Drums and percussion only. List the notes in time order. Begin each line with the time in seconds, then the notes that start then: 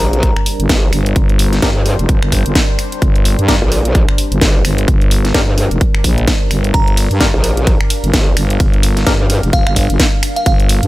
0.00 open hi-hat
0.13 closed hi-hat
0.23 kick, closed hi-hat
0.36 finger snap
0.46 open hi-hat
0.60 closed hi-hat
0.69 kick, snare, closed hi-hat
0.93 finger snap, open hi-hat
1.06 closed hi-hat
1.16 kick, closed hi-hat
1.29 closed hi-hat
1.39 open hi-hat
1.53 snare, closed hi-hat
1.62 kick, snare, closed hi-hat
1.86 open hi-hat
1.99 closed hi-hat
2.09 kick, closed hi-hat
2.23 finger snap
2.32 kick, open hi-hat
2.46 closed hi-hat
2.55 kick, snare, closed hi-hat
2.79 finger snap, open hi-hat
2.92 closed hi-hat
3.02 kick, closed hi-hat
3.16 closed hi-hat
3.25 open hi-hat
3.39 closed hi-hat
3.48 kick, snare, closed hi-hat
3.72 open hi-hat
3.85 closed hi-hat
3.95 kick, closed hi-hat
4.09 finger snap
4.18 open hi-hat
4.32 closed hi-hat
4.41 kick, snare, closed hi-hat
4.65 finger snap, open hi-hat
4.78 closed hi-hat
4.88 kick, closed hi-hat
5.02 closed hi-hat
5.11 open hi-hat
5.25 snare, closed hi-hat
5.34 kick, snare, closed hi-hat
5.58 open hi-hat
5.71 closed hi-hat
5.81 kick, closed hi-hat
5.95 finger snap
6.04 kick, open hi-hat
6.18 closed hi-hat
6.27 kick, snare, closed hi-hat
6.51 finger snap, open hi-hat
6.64 closed hi-hat
6.74 kick, closed hi-hat, ride
6.88 closed hi-hat
6.97 open hi-hat, ride
7.11 closed hi-hat
7.21 kick, snare, closed hi-hat, ride
7.44 open hi-hat, ride
7.57 closed hi-hat
7.67 kick, closed hi-hat, ride
7.81 finger snap
7.90 open hi-hat, ride
8.04 closed hi-hat
8.14 kick, snare, closed hi-hat, ride
8.37 finger snap, open hi-hat, ride
8.50 closed hi-hat
8.60 kick, closed hi-hat, ride
8.74 closed hi-hat
8.83 open hi-hat, ride
8.97 snare, closed hi-hat
9.07 kick, snare, closed hi-hat, ride
9.30 open hi-hat, ride
9.43 closed hi-hat
9.53 kick, closed hi-hat, ride
9.67 finger snap
9.76 kick, open hi-hat, ride
9.90 closed hi-hat
10.00 kick, snare, closed hi-hat, ride
10.23 finger snap, open hi-hat, ride
10.36 closed hi-hat
10.46 kick, closed hi-hat, ride
10.60 closed hi-hat
10.69 open hi-hat, ride
10.83 closed hi-hat